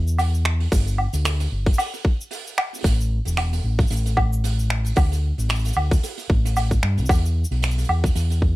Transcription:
Already playing: fingered electric bass E2
0.08 cabasa
0.18 open hi-hat, cabasa, low woodblock
0.34 cabasa
0.45 finger snap
0.60 open hi-hat
0.72 fingered electric bass G1, kick, open hi-hat, cabasa
0.74 cabasa
0.87 cabasa
0.98 low woodblock
1.13 fingered electric bass D2, open hi-hat, cabasa
1.25 finger snap, open hi-hat, cabasa
1.40 open hi-hat, cabasa
1.52 fingered electric bass G1
1.66 kick, open hi-hat
1.73 cabasa
1.78 open hi-hat, cabasa, low woodblock
1.94 open hi-hat, cabasa
2.05 kick
2.21 cabasa
2.31 open hi-hat, cabasa
2.47 cabasa
2.58 finger snap, low woodblock
2.73 open hi-hat, cabasa
2.75 open hi-hat
2.79 open hi-hat
2.81 open hi-hat
2.83 fingered electric bass A1, kick, open hi-hat
2.85 open hi-hat, cabasa
3.01 cabasa
3.25 fingered electric bass E1, open hi-hat, cabasa
3.37 finger snap, open hi-hat, low woodblock
3.53 open hi-hat, cabasa
3.64 fingered electric bass A1
3.79 kick, open hi-hat, cabasa
3.87 fingered electric bass A1, open hi-hat, cabasa
3.92 cabasa
3.96 cabasa
4.06 open hi-hat, cabasa
4.17 kick, low woodblock
4.33 cabasa
4.44 open hi-hat, cabasa
4.59 cabasa
4.70 finger snap
4.84 open hi-hat, cabasa
4.96 fingered electric bass D2, kick, open hi-hat, cabasa, low woodblock
5.12 open hi-hat, cabasa
5.38 fingered electric bass A1, open hi-hat, cabasa
5.49 finger snap, open hi-hat, cabasa
5.55 cabasa
5.59 cabasa
5.65 open hi-hat, cabasa
5.68 cabasa
5.73 fingered electric bass D2, cabasa, low woodblock
5.91 kick, open hi-hat, cabasa
6.03 open hi-hat, cabasa
6.18 open hi-hat, cabasa
6.30 fingered electric bass A1, kick
6.45 open hi-hat, cabasa
6.56 open hi-hat, cabasa, low woodblock
6.71 kick, cabasa
6.83 fingered electric bass G2, finger snap
6.97 fingered electric bass C2, open hi-hat, cabasa
7.06 fingered electric bass E2, kick, open hi-hat, cabasa, low woodblock
7.11 cabasa
7.15 cabasa
7.26 cabasa
7.44 cabasa
7.51 fingered electric bass B1, open hi-hat
7.62 finger snap, open hi-hat, cabasa
7.71 cabasa
7.78 open hi-hat, cabasa
7.84 cabasa
7.89 fingered electric bass E2, low woodblock
8.04 kick, open hi-hat, cabasa
8.15 fingered electric bass E2, open hi-hat, cabasa
8.30 open hi-hat, cabasa
8.42 kick

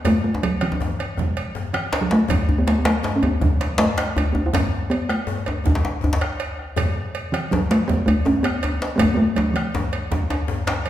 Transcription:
0.04 talking drum A3, bombo low, cowbell, djembe slap, djembe tone, high conga, djembe bass, low conga
0.24 talking drum A3
0.34 djembe tone
0.43 talking drum F#3, cowbell, djembe tone
0.61 talking drum E3, bombo rim, cowbell
0.72 djembe tone
0.80 djembe slap, djembe tone, djembe bass
0.99 bombo rim, cowbell
1.17 bombo rim, bombo low, djembe slap, djembe tone, high conga, low conga
1.36 bombo rim, cowbell, djembe slap
1.55 bombo rim, djembe slap, djembe bass
1.73 talking drum E3, bombo rim, cowbell, djembe slap
1.93 cowbell, djembe slap
2.01 talking drum F#3
2.11 talking drum A3, djembe slap
2.28 bombo rim, bombo low, cowbell, djembe slap, djembe tone, djembe bass
2.30 high conga, djembe bass, low conga
2.48 djembe slap, djembe bass
2.58 talking drum B3
2.67 talking drum A3, cowbell, djembe slap
2.78 talking drum B3
2.85 talking drum A3, bombo rim, cowbell, djembe slap
3.03 djembe slap, djembe bass
3.16 talking drum C#4
3.23 talking drum B3, cowbell, djembe bass
3.41 bombo rim, bombo low, djembe tone, high conga, djembe bass, low conga
3.61 cowbell, djembe slap
3.78 talking drum A3, bombo rim, djembe slap, djembe bass
3.98 bombo rim, cowbell, djembe slap, high conga
4.16 talking drum A3, cowbell, djembe bass
4.33 talking drum B3, bombo rim, djembe bass
4.46 talking drum E4
4.53 talking drum C#4, bombo rim, bombo low, cowbell, djembe slap, djembe tone, high conga, djembe bass, low conga
4.72 djembe slap
4.90 talking drum B3, cowbell
5.09 talking drum A3, bombo rim, cowbell
5.27 djembe slap, djembe bass
5.46 cowbell, djembe tone
5.64 bombo rim, bombo low, djembe tone, high conga, low conga, djembe bass
5.75 djembe slap
5.85 djembe tone
6.01 bombo rim, djembe slap, djembe bass
6.04 djembe bass
6.13 djembe slap
6.21 bombo rim, cowbell, high conga
6.40 cowbell, djembe slap
6.59 bombo rim
6.76 bombo rim, bombo low, cowbell, djembe slap, djembe tone, high conga, djembe bass, low conga
7.15 cowbell
7.32 talking drum E3, bombo rim, cowbell
7.51 talking drum F#3, djembe slap, djembe tone, djembe bass
7.71 talking drum A3, cowbell, djembe slap
7.88 talking drum B3, bombo rim, bombo low, djembe tone, high conga, low conga
8.06 talking drum A3, cowbell, djembe bass
8.25 talking drum C#4, bombo rim, djembe slap, djembe tone, djembe bass
8.43 talking drum B3, bombo rim, cowbell, high conga
8.63 cowbell, djembe slap, djembe tone
8.82 bombo rim, djembe slap
8.96 talking drum A3 B3, cowbell, djembe slap, djembe tone, djembe bass
9.00 bombo low, djembe tone, high conga, low conga
9.14 talking drum A3 B3
9.36 talking drum F#3, bombo rim, cowbell, djembe tone
9.50 talking drum E3 F#3
9.56 bombo rim, cowbell, djembe slap
9.74 djembe slap, djembe tone, djembe bass
9.93 cowbell
10.11 bombo low, high conga, djembe tone, low conga
10.30 cowbell, djembe tone
10.48 djembe slap, djembe bass
10.67 bombo rim, cowbell, djembe slap, djembe bass, low conga
10.86 cowbell, djembe slap, high conga

